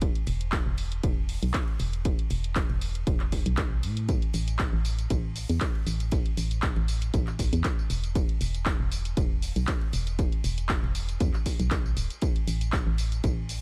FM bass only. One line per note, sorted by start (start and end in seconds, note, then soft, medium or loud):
0.00 0.12 E1 loud
0.27 0.63 E1 loud
0.66 1.00 E1 medium
1.03 1.39 E1 medium
1.43 1.52 B1 medium
1.80 2.15 E1 loud
2.31 2.66 E1 loud
2.70 3.04 E1 medium
3.07 3.42 E1 medium
3.46 3.85 B1 medium
3.83 4.19 A2 medium
4.34 4.70 A1 medium
4.73 5.07 A1 medium
5.10 5.46 A1 medium
5.49 5.59 E2 medium
5.87 6.22 A1 loud
6.37 6.73 A1 loud
6.77 7.11 A1 medium
7.14 7.49 A1 medium
7.53 7.63 E2 loud
7.90 8.26 E1 loud
8.41 8.76 E1 loud
8.80 9.14 E1 medium
9.17 9.53 E1 medium
9.56 9.66 B1 medium
9.93 10.29 E1 loud
10.44 10.80 E1 loud
10.83 11.17 E1 medium
11.20 11.32 E2 medium
11.60 11.94 B1 medium
11.97 12.08 D1 medium
12.47 12.83 A1 loud
12.87 13.21 A1 medium
13.24 13.59 A1 medium